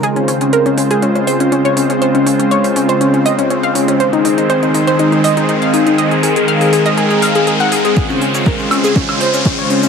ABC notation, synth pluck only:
X:1
M:4/4
L:1/16
Q:1/4=121
K:Db
V:1 name="Synth pluck"
A D D D B D D A D D c D D d D D | c D D D d D D c D D e D D f D D | c E E E c E E c E E e E E f E E | e A A A f A A e A A f A A g A A |
A D D D B D D A D D c D D d D D |]